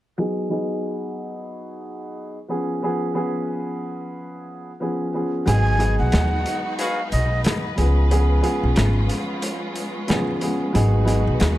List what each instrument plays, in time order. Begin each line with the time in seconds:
0.18 grand piano F#3 B3 D#4 G#4
0.49 grand piano F#3 B3 D#4 G#4
2.48 grand piano F3 B3 C#4 G#4
2.82 grand piano F3 B3 C#4 G#4
3.14 grand piano F3 B3 C#4 G#4
4.80 grand piano F3 B3 C#4 G#4
5.14 grand piano F3 B3 C#4 G#4
5.45 upright bass G#1, grand piano F#3 B3 D#4 G#4, string section G#3 D#4 F#4 B4, flute G#5, closed hi-hat
5.77 grand piano F#3 B3 D#4 G#4, closed hi-hat
5.99 upright bass B1, flute F#5
6.12 upright bass D#2, cross-stick, snare, closed hi-hat
6.46 closed hi-hat
6.79 trumpet section F#4 G#4 B4, flute F5, closed hi-hat
7.11 upright bass B1, flute D#5, closed hi-hat
7.44 cross-stick, snare, closed hi-hat
7.76 upright bass C#2, grand piano F3 B3 C#4 G#4, string section C#4 F4, closed hi-hat
8.10 grand piano F3 B3 C#4 G#4, closed hi-hat
8.41 grand piano F3 B3 C#4 G#4, closed hi-hat
8.63 upright bass B1
8.76 upright bass G#1, cross-stick, snare, closed hi-hat
9.09 closed hi-hat
9.42 closed hi-hat
9.76 closed hi-hat
10.07 grand piano F3 B3 C#4 G#4, cross-stick, snare, closed hi-hat
10.41 grand piano F3 B3 C#4 G#4, closed hi-hat
10.73 upright bass G#1, grand piano F#3 B3 D#4 G#4, string section D#4 F#4 B4, closed hi-hat
11.04 grand piano F#3 B3 D#4 G#4, closed hi-hat
11.27 upright bass B1
11.40 upright bass D#2, cross-stick, snare, closed hi-hat